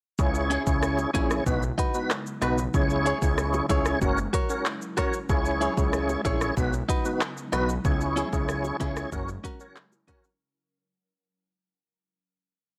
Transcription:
0.19 analog synth bass C#2, ambient pad C#3 G#3 E4, tonewheel organ C#4 E4 G#4 C#5, kick, high bongo, shaker
0.35 shaker
0.50 clean electric guitar C#4 E4 G#4, closed hi-hat, shaker
0.66 analog synth bass C#2, tonewheel organ C#4 E4 G#4 C#5, kick, shaker
0.83 cross-stick, shaker
0.99 high bongo, shaker
1.14 analog synth bass A#1, clean electric guitar C#4 E4 G#4, tonewheel organ C#4 E4 G#4 C#5, kick, closed hi-hat, low bongo, shaker
1.31 cross-stick, shaker
1.46 analog synth bass B1, ambient pad F#3 B3 D#4, tonewheel organ B3 D#4 F#4 B4, kick, high bongo, shaker
1.63 shaker
1.78 clean electric guitar D#4 F#4 B4, kick, closed hi-hat, shaker
1.94 tonewheel organ B3 D#4 F#4 B4, shaker
2.10 cross-stick, clap, shaker
2.27 shaker
2.42 analog synth bass B1, tonewheel organ B3 D#4 F#4 B4, clean electric guitar D#4 F#4 B4, cross-stick, closed hi-hat, low bongo, shaker
2.58 shaker
2.74 analog synth bass C#2, ambient pad C#3 G#3 E4, tonewheel organ C#4 E4 G#4 C#5, kick, high bongo, shaker
2.90 shaker
3.06 clean electric guitar E4 G#4 C#5, closed hi-hat, shaker
3.22 analog synth bass C#2, tonewheel organ C#4 E4 G#4 C#5, kick, shaker
3.38 cross-stick, shaker
3.54 high bongo, shaker
3.69 analog synth bass C#2, tonewheel organ C#4 E4 G#4 C#5, clean electric guitar E4 G#4 C#5, kick, closed hi-hat, low bongo, shaker
3.86 cross-stick, shaker
4.02 analog synth bass F#1, ambient pad F#3 C#4 A#4, tonewheel organ C#4 F#4 A#4 C#5, kick, high bongo, shaker
4.18 shaker
4.33 clean electric guitar F#4 A#4 C#5, kick, closed hi-hat, shaker
4.49 tonewheel organ C#4 F#4 A#4 C#5, shaker
4.66 cross-stick, clap, shaker
4.82 shaker
4.97 tonewheel organ C#4 F#4 A#4 C#5, clean electric guitar F#4 A#4 C#5, kick, cross-stick, closed hi-hat, low bongo, shaker
5.14 shaker
5.29 analog synth bass C#2, ambient pad C#3 G#3 E4, tonewheel organ C#4 E4 G#4 C#5, kick, high bongo, shaker
5.45 shaker
5.61 clean electric guitar E4 G#4 C#5, closed hi-hat, shaker
5.77 analog synth bass C#2, tonewheel organ C#4 E4 G#4 C#5, kick, shaker
5.93 cross-stick, shaker
6.09 high bongo, shaker
6.25 analog synth bass A#1, tonewheel organ C#4 E4 G#4 C#5, clean electric guitar E4 G#4 C#5, kick, closed hi-hat, low bongo, shaker
6.41 cross-stick, shaker
6.57 analog synth bass B1, ambient pad F#3 B3 D#4, tonewheel organ B3 D#4 F#4 B4, kick, high bongo, shaker
6.73 shaker
6.89 clean electric guitar D#4 F#4 B4, kick, closed hi-hat, shaker
7.05 tonewheel organ B3 D#4 F#4 B4, shaker
7.21 cross-stick, clap, shaker
7.37 shaker
7.52 analog synth bass B1, tonewheel organ B3 D#4 F#4 B4, clean electric guitar D#4 F#4 B4, cross-stick, closed hi-hat, low bongo, shaker
7.69 shaker
7.85 analog synth bass C#2, ambient pad C#3 G#3 E4, tonewheel organ C#4 E4 G#4 C#5, kick, high bongo, shaker
8.01 shaker
8.16 clean electric guitar C#4 E4 G#4, closed hi-hat, high bongo, shaker
8.33 analog synth bass C#2, tonewheel organ C#4 E4 G#4 C#5, kick, shaker
8.49 cross-stick, shaker
8.65 high bongo, shaker
8.80 analog synth bass C#2, clean electric guitar C#4 E4 G#4, tonewheel organ C#4 E4 G#4 C#5, kick, closed hi-hat, low bongo, shaker
8.97 cross-stick, shaker
9.12 analog synth bass F#1, ambient pad F#3 C#4 A#4, tonewheel organ C#4 F#4 A#4 C#5, kick, high bongo, shaker
9.28 shaker
9.44 clean electric guitar C#4 F#4 A#4, kick, closed hi-hat, shaker
9.60 tonewheel organ C#4 F#4 A#4 C#5, shaker
9.76 cross-stick, clap, shaker
9.92 high bongo, shaker
10.08 clean electric guitar C#4 F#4 A#4, tonewheel organ C#4 F#4 A#4 C#5, kick, closed hi-hat, low bongo, shaker
10.24 shaker

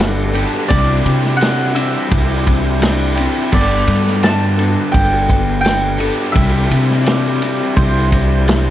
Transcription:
Already playing: upright bass G1, overdriven electric guitar G2 D3 G3 B3 D4 G4, steel-string acoustic guitar G3 B3, accordion D4 G4 A4 B4, mandolin D5
0.00 steel-string acoustic guitar D4 A4, snare, ride
0.33 overdriven electric guitar G2 D3 G3 B3 D4 G4, steel-string acoustic guitar B3 D4 A4, ride
0.67 steel-string acoustic guitar C3 G3 C4 D4 E4, overdriven electric guitar C3 E3 G3, accordion D4 E4 G4 C5, mandolin D5, kick, ride
0.71 upright bass C2, overdriven electric guitar E4 G4
1.05 upright bass C3, ride
1.25 snare
1.37 mandolin F#5
1.41 snare, ride
1.72 steel-string acoustic guitar C4 D4 E4, mandolin E5, ride
2.07 steel-string acoustic guitar G3 C4 D4 E4
2.12 upright bass C2, kick, ride
2.44 steel-string acoustic guitar C4 D4 E4, kick, ride
2.80 steel-string acoustic guitar G3 C4 D4 E4, snare, ride
3.16 overdriven electric guitar C3 E3 G3 E4 G4, steel-string acoustic guitar C4 D4 E4, ride
3.51 upright bass G1, overdriven electric guitar G2 D3 G3 B3 D4 G4, steel-string acoustic guitar G3 B3 D4 A4, accordion D4 G4 A4 B4, mandolin D5, kick, crash
3.87 upright bass G2, ride
4.07 snare
4.23 mandolin A5, snare, ride
4.57 steel-string acoustic guitar B3 D4 A4, ride
4.92 upright bass G1, steel-string acoustic guitar G3 B3 D4, mandolin G5, kick, ride
4.96 steel-string acoustic guitar A4
5.28 steel-string acoustic guitar B3 D4 A4, kick, ride
5.61 steel-string acoustic guitar G3, mandolin G5, ride
5.66 steel-string acoustic guitar B3 D4 A4, snare
5.98 overdriven electric guitar G2 D3 G3 B3 D4 G4, steel-string acoustic guitar D4 A4, ride
6.03 steel-string acoustic guitar B3
6.32 steel-string acoustic guitar C3 G3 C4 D4 E4, overdriven electric guitar C3 E3 G3 E4, accordion D4 E4 G4 C5, mandolin E5, kick, ride
6.36 upright bass C2, overdriven electric guitar G4
6.70 upright bass C3, ride
6.90 snare
7.03 mandolin D5, ride
7.08 snare
7.40 steel-string acoustic guitar C4 D4 E4, ride
7.75 upright bass C2, steel-string acoustic guitar G3 C4 D4 E4, mandolin C5, kick, ride
8.11 steel-string acoustic guitar C4 D4 E4, kick, ride
8.47 steel-string acoustic guitar G3 C4 D4 E4, snare, ride

